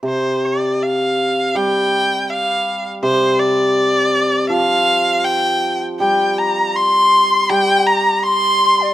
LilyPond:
<<
  \new Staff \with { instrumentName = "Dizi" } { \time 2/4 \tempo 4 = 80 r2 | r2 | r2 | r2 |
g''8 bes''8 c'''4 | g''8 bes''8 c'''8. d''16 | }
  \new Staff \with { instrumentName = "Erhu" } { \time 2/4 c''8 d''8 f''4 | g''4 f''8. r16 | c''8 d''4. | f''4 g''8. r16 |
g''8 bes''8 c'''4 | g''8 bes''8 c'''4 | }
  \new Staff \with { instrumentName = "Hammered dulcimer" } { \clef bass \time 2/4 c2 | g2 | c2 | f2 |
g2 | g2 | }
>>